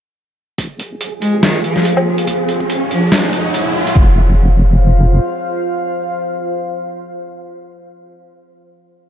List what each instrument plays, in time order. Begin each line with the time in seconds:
0.58 wobble bass F1, ambient pad F4 C5 F5, synth texture G#4, kick, closed hi-hat, riser
0.80 closed hi-hat
1.01 closed hi-hat
1.22 cello G#3, closed hi-hat
1.43 cello D#3, snare, closed hi-hat
1.64 cello F3, closed hi-hat
1.76 snare
1.85 closed hi-hat
1.97 low woodblock
2.06 wobble bass C2
2.18 closed hi-hat
2.27 ambient pad G#4 C#5 F#5, kick, closed hi-hat
2.49 closed hi-hat
2.60 kick
2.70 wobble bass F#1, closed hi-hat
2.91 cello F3, closed hi-hat
3.12 snare, closed hi-hat
3.33 wobble bass D#2, closed hi-hat
3.54 closed hi-hat
3.75 wobble bass F#1
3.87 closed hi-hat
3.96 wobble bass F1, ambient pad F4 C5 F5, kick